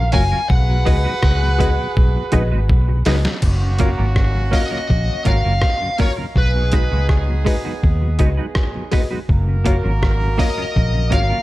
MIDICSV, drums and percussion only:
0, 0, Header, 1, 2, 480
1, 0, Start_track
1, 0, Key_signature, 6, "major"
1, 0, Tempo, 732601
1, 328, Time_signature, 4, 2, 24, 8
1, 7486, End_track
2, 0, Start_track
2, 0, Title_t, "Drums"
2, 79, Note_on_c, 9, 46, 80
2, 91, Note_on_c, 9, 36, 98
2, 145, Note_off_c, 9, 46, 0
2, 157, Note_off_c, 9, 36, 0
2, 327, Note_on_c, 9, 36, 116
2, 392, Note_off_c, 9, 36, 0
2, 566, Note_on_c, 9, 46, 58
2, 571, Note_on_c, 9, 36, 110
2, 632, Note_off_c, 9, 46, 0
2, 636, Note_off_c, 9, 36, 0
2, 803, Note_on_c, 9, 37, 127
2, 806, Note_on_c, 9, 36, 117
2, 869, Note_off_c, 9, 37, 0
2, 872, Note_off_c, 9, 36, 0
2, 1048, Note_on_c, 9, 36, 101
2, 1052, Note_on_c, 9, 42, 74
2, 1113, Note_off_c, 9, 36, 0
2, 1117, Note_off_c, 9, 42, 0
2, 1290, Note_on_c, 9, 36, 120
2, 1355, Note_off_c, 9, 36, 0
2, 1519, Note_on_c, 9, 42, 76
2, 1527, Note_on_c, 9, 36, 97
2, 1584, Note_off_c, 9, 42, 0
2, 1592, Note_off_c, 9, 36, 0
2, 1766, Note_on_c, 9, 36, 118
2, 1831, Note_off_c, 9, 36, 0
2, 2000, Note_on_c, 9, 46, 80
2, 2006, Note_on_c, 9, 38, 103
2, 2065, Note_off_c, 9, 46, 0
2, 2072, Note_off_c, 9, 38, 0
2, 2129, Note_on_c, 9, 38, 98
2, 2194, Note_off_c, 9, 38, 0
2, 2241, Note_on_c, 9, 49, 84
2, 2244, Note_on_c, 9, 36, 101
2, 2307, Note_off_c, 9, 49, 0
2, 2310, Note_off_c, 9, 36, 0
2, 2480, Note_on_c, 9, 42, 77
2, 2488, Note_on_c, 9, 36, 100
2, 2546, Note_off_c, 9, 42, 0
2, 2554, Note_off_c, 9, 36, 0
2, 2725, Note_on_c, 9, 36, 108
2, 2725, Note_on_c, 9, 37, 118
2, 2790, Note_off_c, 9, 36, 0
2, 2791, Note_off_c, 9, 37, 0
2, 2967, Note_on_c, 9, 36, 92
2, 2969, Note_on_c, 9, 46, 73
2, 3033, Note_off_c, 9, 36, 0
2, 3035, Note_off_c, 9, 46, 0
2, 3210, Note_on_c, 9, 36, 112
2, 3275, Note_off_c, 9, 36, 0
2, 3441, Note_on_c, 9, 42, 71
2, 3447, Note_on_c, 9, 36, 91
2, 3507, Note_off_c, 9, 42, 0
2, 3512, Note_off_c, 9, 36, 0
2, 3679, Note_on_c, 9, 37, 119
2, 3686, Note_on_c, 9, 36, 118
2, 3745, Note_off_c, 9, 37, 0
2, 3752, Note_off_c, 9, 36, 0
2, 3920, Note_on_c, 9, 46, 69
2, 3930, Note_on_c, 9, 36, 100
2, 3986, Note_off_c, 9, 46, 0
2, 3995, Note_off_c, 9, 36, 0
2, 4165, Note_on_c, 9, 36, 107
2, 4230, Note_off_c, 9, 36, 0
2, 4401, Note_on_c, 9, 42, 78
2, 4410, Note_on_c, 9, 36, 106
2, 4466, Note_off_c, 9, 42, 0
2, 4475, Note_off_c, 9, 36, 0
2, 4646, Note_on_c, 9, 37, 125
2, 4647, Note_on_c, 9, 36, 106
2, 4712, Note_off_c, 9, 36, 0
2, 4712, Note_off_c, 9, 37, 0
2, 4890, Note_on_c, 9, 36, 95
2, 4893, Note_on_c, 9, 46, 73
2, 4955, Note_off_c, 9, 36, 0
2, 4958, Note_off_c, 9, 46, 0
2, 5133, Note_on_c, 9, 36, 113
2, 5198, Note_off_c, 9, 36, 0
2, 5364, Note_on_c, 9, 42, 71
2, 5369, Note_on_c, 9, 36, 96
2, 5430, Note_off_c, 9, 42, 0
2, 5434, Note_off_c, 9, 36, 0
2, 5602, Note_on_c, 9, 37, 113
2, 5608, Note_on_c, 9, 36, 107
2, 5668, Note_off_c, 9, 37, 0
2, 5674, Note_off_c, 9, 36, 0
2, 5842, Note_on_c, 9, 46, 76
2, 5852, Note_on_c, 9, 36, 101
2, 5907, Note_off_c, 9, 46, 0
2, 5918, Note_off_c, 9, 36, 0
2, 6087, Note_on_c, 9, 36, 102
2, 6152, Note_off_c, 9, 36, 0
2, 6326, Note_on_c, 9, 42, 81
2, 6331, Note_on_c, 9, 36, 102
2, 6391, Note_off_c, 9, 42, 0
2, 6397, Note_off_c, 9, 36, 0
2, 6568, Note_on_c, 9, 36, 104
2, 6570, Note_on_c, 9, 37, 124
2, 6633, Note_off_c, 9, 36, 0
2, 6636, Note_off_c, 9, 37, 0
2, 6809, Note_on_c, 9, 36, 103
2, 6811, Note_on_c, 9, 46, 74
2, 6875, Note_off_c, 9, 36, 0
2, 6877, Note_off_c, 9, 46, 0
2, 7052, Note_on_c, 9, 36, 108
2, 7117, Note_off_c, 9, 36, 0
2, 7285, Note_on_c, 9, 42, 71
2, 7288, Note_on_c, 9, 36, 94
2, 7351, Note_off_c, 9, 42, 0
2, 7353, Note_off_c, 9, 36, 0
2, 7486, End_track
0, 0, End_of_file